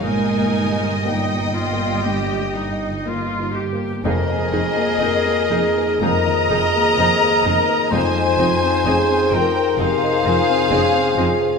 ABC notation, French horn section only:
X:1
M:4/4
L:1/8
Q:1/4=63
K:Ebmix
V:1 name="French horn section"
z8 | B A B A B A A B | c2 A B3 A A |]